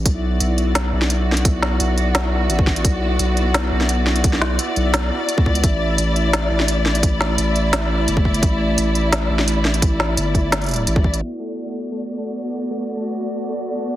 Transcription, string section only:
\new Staff \with { instrumentName = "String section" } { \time 4/4 \key b \minor \tempo 4 = 172 << { d''1~ | d''1~ | d''1~ | d''1~ |
d''1~ | d''1~ | d''1~ | d''1 |
d''1~ | d''1 | } \\ { <b fis'>1~ | <b fis'>1~ | <b fis'>1~ | <b fis'>1 |
<a e'>1~ | <a e'>1~ | <a e'>1~ | <a e'>1 |
<b fis'>1~ | <b fis'>1 | } >> }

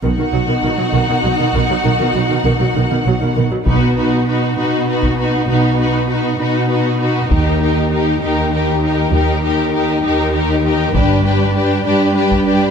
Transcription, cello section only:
\new Staff \with { instrumentName = "Cello section" } { \clef bass \time 6/8 \key b \major \tempo 4. = 66 b,16 b,16 b,16 b,16 b,16 b,16 b,16 b,16 b,16 b,16 b,16 b,16 | b,16 b,16 b,16 b,16 b,16 b,16 b,16 b,16 b,16 b,16 b,16 b,16 | b,4~ b,16 r16 b,4~ b,16 r16 | b,4~ b,16 r16 b,4~ b,16 r16 |
dis,4~ dis,16 r16 dis,4~ dis,16 r16 | dis,4~ dis,16 r16 dis,4~ dis,16 r16 | g,4~ g,16 r16 g,4~ g,16 r16 | }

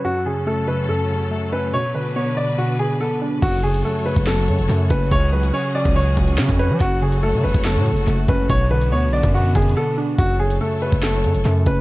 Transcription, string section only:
\new Staff \with { instrumentName = "String section" } { \time 4/4 \key fis \minor \tempo 4 = 142 << { <fis, cis' a'>1 | <b, d' b'>1 | <fis a' cis''>1 | <cis gis'>1 |
<fis a' cis''>1 | d'1 | <fis a' cis''>1 | } \\ { fis1~ | fis1 | fis'1 | cis'1 |
r1 | b1 | r1 | } >> }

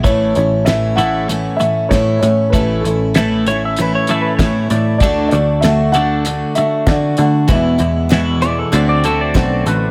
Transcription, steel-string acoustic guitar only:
\new Staff \with { instrumentName = "Steel-string acoustic guitar" } { \time 4/4 \key a \major \tempo 4 = 97 <a, e a cis' e'>8 <a cis' e'>8 <a, e a cis' e'>8 <a cis' e'>8 <e a cis' e'>8 <a cis' e'>8 <a, e a cis' e'>8 <a cis' e'>8 | <a, e a cis' e'>8 <a cis' e'>8 <a, e a cis' e'>8 <a cis' e'>8 <e a cis' e'>8 <a cis' e'>8 <a, e a cis' e'>8 <a e'>8 | <d a d' fis'>8 <a d' fis'>8 <d a d' fis'>8 <a d' fis'>8 <d a d' fis'>8 <a d' fis'>8 <d a d' fis'>8 <a d' fis'>8 | <e, b, e gis b e'>8 <e gis b e'>8 <e, b, e gis b e'>8 <e gis b e'>8 <d a c' fis'>8 <a c' fis'>8 <d a c' fis'>8 <a c' fis'>8 | }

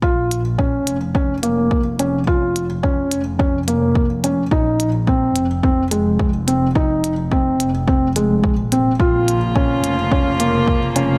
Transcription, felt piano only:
\new Staff \with { instrumentName = "Felt piano" } { \time 4/4 \key bes \minor \tempo 4 = 107 f'4 des'4 des'8 bes4 des'8 | f'4 des'4 des'8 bes4 des'8 | ees'4 c'4 c'8 aes4 c'8 | ees'4 c'4 c'8 aes4 c'8 |
f'4 des'4 des'8 bes4 des'8 | }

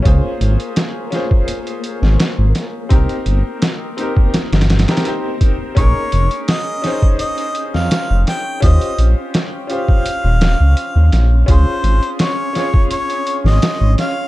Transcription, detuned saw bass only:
\new Staff \with { instrumentName = "Detuned saw bass" } { \clef bass \time 4/4 \key des \lydian \tempo 4 = 84 des,16 r16 aes,,16 r2 aes,,16 r16 aes,,16 r8 | c,16 r16 g,,16 r4. g,,16 g,,16 r4 r16 | bes,,16 r16 f,,16 r2 f,16 r16 f,,16 r8 | ees,16 r16 bes,,16 r4. ees,,8 des,16 r16 ees,16 bes,,8 |
des,16 r16 aes,,16 r2 aes,,16 r16 aes,,16 r8 | }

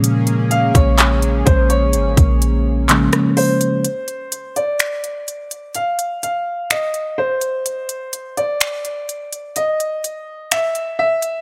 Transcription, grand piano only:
\new Staff \with { instrumentName = "Grand piano" } { \time 4/4 \key bes \major \tempo 4 = 63 r8 f''16 des''8. c''16 des''4.~ des''16 c''8~ | c''8. d''4~ d''16 f''8 f''8 ees''8 c''8~ | c''8. d''4~ d''16 ees''4 e''8 e''8 | }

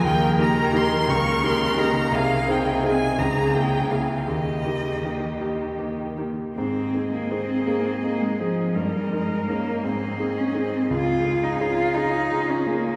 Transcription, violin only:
\new Staff \with { instrumentName = "Violin" } { \time 6/8 \key aes \major \tempo 4. = 56 g''8 bes''8 c'''8 des'''8 c'''8 bes''8 | f''8 g''8 aes''8 bes''8 g''8 f''8 | ees''4. r4. | ees''2. |
ees''4. ees''4. | f''2. | }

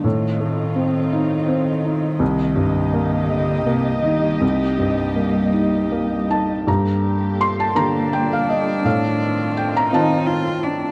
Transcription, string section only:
\new Staff \with { instrumentName = "String section" } { \time 6/8 \key g \minor \tempo 4. = 55 <c' ees' f'>2. | <bes g' ees''>2.~ | <bes g' ees''>2. | <d bes g'>2. |
<ees c' f'>2. | }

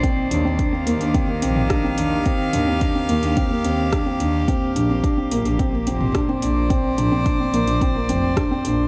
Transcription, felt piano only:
\new Staff \with { instrumentName = "Felt piano" } { \time 4/4 \key bes \major \tempo 4 = 108 c'8 d'16 c'16 d'16 c'16 bes16 d'16 c'16 bes16 c'8 d'16 c'16 d'8 | c'8 d'16 c'16 d'16 c'16 bes16 d'16 c'16 bes16 c'8 d'16 c'16 d'8 | c'8 d'16 c'16 d'16 c'16 bes16 d'16 c'16 bes16 c'8 d'16 c'16 d'8 | c'8 d'16 c'16 d'16 c'16 bes16 d'16 c'16 bes16 c'8 d'16 c'16 d'8 | }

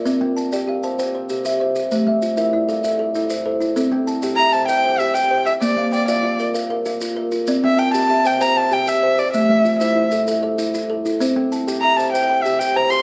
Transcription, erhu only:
\new Staff \with { instrumentName = "Erhu" } { \time 12/8 \key c \mixolydian \tempo 4. = 129 r1. | r1. | r2 bes''8 a''8 g''4 e''8 g''4 e''8 | d''4 d''8 d''4 r2. r8 |
r8 e''8 g''8 a''4 g''8 bes''8 a''8 g''8 e''4 d''8 | e''4. e''4 r2. r8 | r2 bes''8 a''8 g''4 e''8 g''8 bes''8 c'''8 | }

